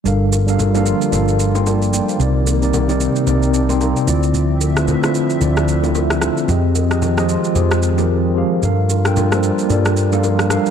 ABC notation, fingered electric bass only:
X:1
M:4/4
L:1/8
Q:"Swing 16ths" 1/4=112
K:Gm
V:1 name="Fingered electric bass" clef=bass
G,,,4 G,,,4 | C,,4 C,,3 D,,- | D,,3 z D,,4 | F,,4 F,,4 |
G,,4 G,,4 |]